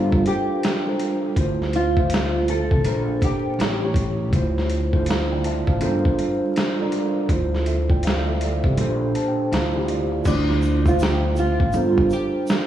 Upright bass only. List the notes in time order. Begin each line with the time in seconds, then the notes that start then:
Already playing: G1
1.37 D2
2.71 C2
2.85 A#1
3.59 A1
4.33 D2
5.68 A1
5.81 G1
7.29 D2
8.64 C2
8.78 A#1
9.52 D2
10.26 D2
11.60 A1
11.74 G1